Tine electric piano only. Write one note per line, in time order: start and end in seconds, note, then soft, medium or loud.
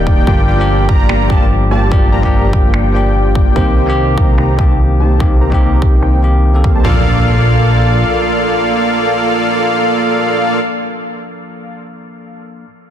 0.00 0.29 D#3 medium
0.00 0.27 A#3 medium
0.00 0.28 D4 medium
0.00 0.28 G4 loud
0.00 0.30 D5 medium
0.26 0.56 F3 medium
0.26 0.56 A#3 medium
0.26 0.56 D4 medium
0.26 0.57 G4 medium
0.57 1.27 F3 loud
0.57 1.27 A#3 medium
0.57 1.28 D4 medium
0.57 1.29 G4 loud
1.28 1.88 F3 medium
1.28 1.89 A#3 medium
1.28 1.90 D4 medium
1.32 1.90 G4 medium
1.91 2.20 F3 medium
1.91 2.20 A#3 medium
1.91 2.21 D4 medium
1.91 2.21 G4 loud
2.21 2.91 F3 medium
2.21 2.92 A#3 medium
2.21 2.92 D4 medium
2.21 2.93 G4 loud
2.92 3.53 F3 medium
2.92 3.53 A#3 medium
2.92 3.54 D4 medium
2.96 3.55 G4 medium
3.55 3.84 D#3 medium
3.55 3.85 A#3 medium
3.55 3.85 C4 medium
3.55 3.85 G4 loud
3.86 4.55 D#3 medium
3.86 4.56 A#3 medium
3.86 4.57 C4 medium
3.90 4.57 G4 loud
4.57 5.17 D#3 medium
4.57 5.18 A#3 medium
4.57 5.18 C4 medium
4.57 5.19 G4 medium
5.19 5.49 D#3 medium
5.19 5.49 A#3 medium
5.19 5.50 C4 medium
5.19 5.50 G4 medium
5.50 6.20 D#3 medium
5.50 6.21 A#3 medium
5.50 6.21 C4 medium
5.54 6.22 G4 loud
6.22 6.52 D#3 medium
6.22 6.52 A#3 medium
6.22 6.52 C4 medium
6.22 6.53 G4 medium
6.54 6.60 D#3 medium
6.54 6.61 A#3 medium
6.54 6.61 C4 medium
6.54 6.61 A4 medium
6.82 10.56 F3 medium
6.82 10.58 A#3 medium
6.86 10.60 D4 medium
6.86 10.62 A4 medium